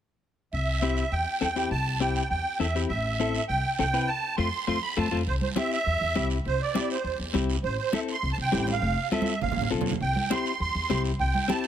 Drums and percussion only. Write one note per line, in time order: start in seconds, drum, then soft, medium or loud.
0.53 long guiro medium
0.82 short guiro medium
0.97 short guiro medium
1.12 long guiro medium
1.41 short guiro medium
1.56 short guiro medium
1.71 long guiro medium
2.01 short guiro medium
2.16 short guiro medium
2.31 long guiro medium
2.61 short guiro medium
2.76 short guiro medium
2.90 long guiro medium
3.20 short guiro medium
3.35 short guiro medium
3.49 long guiro medium
3.79 short guiro medium
3.94 short guiro medium
4.38 long guiro medium
4.67 long guiro medium
4.97 long guiro medium
5.12 long guiro medium
5.27 high conga soft
5.27 long guiro medium
5.41 high conga medium
5.56 high conga medium
5.56 short guiro medium
5.72 short guiro medium
5.86 long guiro medium
6.01 high conga soft
6.16 high conga medium
6.16 short guiro medium
6.30 short guiro medium
6.45 high conga soft
6.45 long guiro medium
6.75 high conga medium
6.75 short guiro medium
6.90 short guiro medium
7.05 long guiro medium
7.19 high conga soft
7.35 high conga medium
7.35 short guiro medium
7.50 short guiro medium
7.64 high conga soft
7.64 long guiro medium
7.93 high conga medium
7.93 short guiro medium
8.08 short guiro medium
8.23 long guiro medium
8.38 high conga soft
8.53 high conga medium
8.53 short guiro medium
8.67 high conga medium
8.67 short guiro medium
8.82 high conga soft
8.82 long guiro medium
9.11 high conga medium
9.11 short guiro medium
9.22 high conga medium
9.26 short guiro medium
9.41 low conga medium
9.41 long guiro medium
9.52 low conga medium
9.61 low conga medium
9.71 short guiro medium
9.81 low conga medium
9.86 short guiro medium
9.91 low conga medium
10.01 high conga soft
10.01 long guiro medium
10.16 high conga medium
10.30 high conga medium
10.30 short guiro medium
10.46 short guiro medium
10.61 long guiro medium
10.75 high conga soft
10.90 high conga medium
10.90 short guiro medium
11.04 short guiro medium
11.19 high conga soft
11.19 long guiro medium
11.35 high conga medium
11.49 high conga medium
11.49 short guiro medium
11.64 short guiro medium